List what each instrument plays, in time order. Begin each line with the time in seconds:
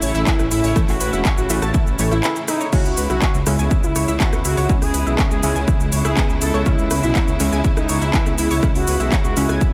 Already playing: synth stab A2 E3 A3, string section C#3 A3 C#4 E4, analog synth lead E4
0.02 detuned saw bass A1, synth pluck C#5 C#6, open hi-hat, shaker
0.15 detuned saw bass A1, synth pluck E4 E5, shaker
0.27 analog synth lead E4, synth pluck B4 B5, kick, clap, shaker
0.39 detuned saw bass A1, cross-stick, shaker
0.51 detuned saw bass A1, analog synth lead E4, synth pluck E4 E5, open hi-hat, shaker
0.64 detuned saw bass A1, synth pluck C#5 C#6, open hi-hat, shaker
0.76 synth stab A2 E3 A3, synth pluck E4 E5, kick, cross-stick, shaker
0.88 detuned saw bass A1, analog synth lead F#4, clap, open hi-hat, shaker
1.01 detuned saw bass A1, synth pluck B4 B5, open hi-hat, shaker
1.13 detuned saw bass E1, synth pluck E4 E5, shaker
1.25 synth pluck C#5 C#6, kick, cross-stick, clap, shaker
1.38 detuned saw bass A1, analog synth lead F#4, shaker
1.50 detuned saw bass A1, synth stab A2 E3 A3, synth pluck E4 E5, open hi-hat, shaker
1.62 detuned saw bass A1, synth pluck A5 A6, cross-stick, shaker
1.74 synth pluck E4 E5, kick, shaker
1.87 detuned saw bass A1, shaker
1.99 detuned saw bass A1, synth stab A2 E3 A3, synth pluck C#5 C#6, open hi-hat, shaker
2.11 detuned saw bass A1, synth pluck E4 E5, analog synth lead E4, cross-stick, shaker
2.24 synth pluck B4 B5, clap, shaker
2.36 shaker
2.48 analog synth lead D#4, synth pluck E4 E5, cross-stick, open hi-hat, shaker
2.61 synth pluck C#5 C#6, shaker
2.73 synth stab C#3 G#3 C#4, string section C#3 G#3 B3 E4, synth pluck E4 E5, analog synth lead F#4, kick, crash, shaker
2.85 detuned saw bass C#2, shaker
2.97 detuned saw bass C#2, synth pluck B4 B5, open hi-hat, shaker
3.10 detuned saw bass B1, synth pluck E4 E5, analog synth lead F#4, cross-stick, shaker
3.22 synth pluck C#5 C#6, kick, clap, shaker
3.34 detuned saw bass C#2, shaker
3.46 detuned saw bass C#2, synth stab C#3 G#3 C#4, synth pluck E4 E5, cross-stick, open hi-hat, shaker
3.59 detuned saw bass C#2, synth pluck G#5 G#6, shaker
3.71 synth pluck E4 E5, kick, shaker
3.83 detuned saw bass C#2, analog synth lead E4, shaker
3.96 detuned saw bass C#2, synth pluck C#5 C#6, cross-stick, open hi-hat, shaker
4.08 detuned saw bass C#2, synth pluck E4 E5, shaker
4.20 analog synth lead F#4, synth pluck B4 B5, kick, clap, shaker
4.33 detuned saw bass C#2, cross-stick, shaker
4.45 detuned saw bass C#2, synth pluck E4 E5, analog synth lead F#4, open hi-hat, shaker
4.57 detuned saw bass C#2, synth pluck C#5 C#6, open hi-hat, shaker
4.69 synth stab C#3 G#3 C#4, synth pluck E4 E5, kick, shaker
4.82 detuned saw bass C#2, analog synth lead G#4, cross-stick, open hi-hat, shaker
4.94 detuned saw bass C#2, synth pluck B4 B5, open hi-hat, shaker
5.06 detuned saw bass B1, synth pluck E4 E5, shaker
5.19 synth pluck C#5 C#6, kick, cross-stick, clap, shaker
5.31 detuned saw bass C#2, analog synth lead G#4, shaker
5.43 detuned saw bass C#2, synth stab C#3 G#3 C#4, synth pluck E4 E5, open hi-hat, shaker
5.56 detuned saw bass C#2, synth pluck G#5 G#6, shaker
5.68 synth pluck E4 E5, kick, cross-stick, shaker
5.80 detuned saw bass C#2, shaker
5.92 detuned saw bass C#2, synth pluck C#5 C#6, open hi-hat, shaker
6.05 detuned saw bass C#2, synth pluck E4 E5, analog synth lead G#4, cross-stick, shaker
6.17 synth pluck B4 B5, kick, clap, shaker
6.29 detuned saw bass C#2, shaker
6.42 detuned saw bass C#2, synth pluck E4 E5, analog synth lead A4, open hi-hat, shaker
6.54 detuned saw bass C#2, synth pluck C#5 C#6, cross-stick, shaker
6.66 synth stab C#3 G#3 C#4, synth pluck E4 E5, analog synth lead E4, kick, shaker
6.79 detuned saw bass C#2, shaker
6.91 detuned saw bass C#2, synth pluck B4 B5, cross-stick, open hi-hat, shaker
7.03 detuned saw bass B1, synth pluck E4 E5, analog synth lead E4, shaker
7.15 synth pluck C#5 C#6, kick, clap, shaker
7.28 detuned saw bass C#2, shaker
7.40 detuned saw bass C#2, synth stab C#3 G#3 C#4, synth pluck E4 E5, cross-stick, open hi-hat, shaker
7.52 detuned saw bass C#2, synth pluck G#5 G#6, shaker
7.64 synth pluck E4 E5, kick, shaker
7.77 detuned saw bass C#2, analog synth lead D#4, cross-stick, shaker
7.89 detuned saw bass C#2, synth pluck C#5 C#6, open hi-hat, shaker
8.02 detuned saw bass C#2, synth pluck E4 E5, shaker
8.14 analog synth lead E4, synth pluck B4 B5, kick, clap, shaker
8.26 detuned saw bass C#2, cross-stick, shaker
8.38 detuned saw bass C#2, synth pluck E4 E5, analog synth lead E4, open hi-hat, shaker
8.51 detuned saw bass C#2, synth pluck C#5 C#6, open hi-hat, shaker
8.63 synth stab C#3 G#3 C#4, synth pluck E4 E5, kick, cross-stick, shaker
8.75 detuned saw bass C#2, analog synth lead F#4, open hi-hat, shaker
8.87 detuned saw bass C#2, synth pluck B4 B5, open hi-hat, shaker
9.00 detuned saw bass B1, synth pluck E4 E5, shaker
9.12 synth pluck C#5 C#6, kick, cross-stick, clap, shaker
9.24 detuned saw bass C#2, analog synth lead F#4, shaker
9.37 detuned saw bass C#2, synth stab C#3 G#3 C#4, synth pluck E4 E5, open hi-hat, shaker
9.49 detuned saw bass C#2, synth pluck G#5 G#6, cross-stick, shaker
9.61 synth pluck E4 E5, kick, shaker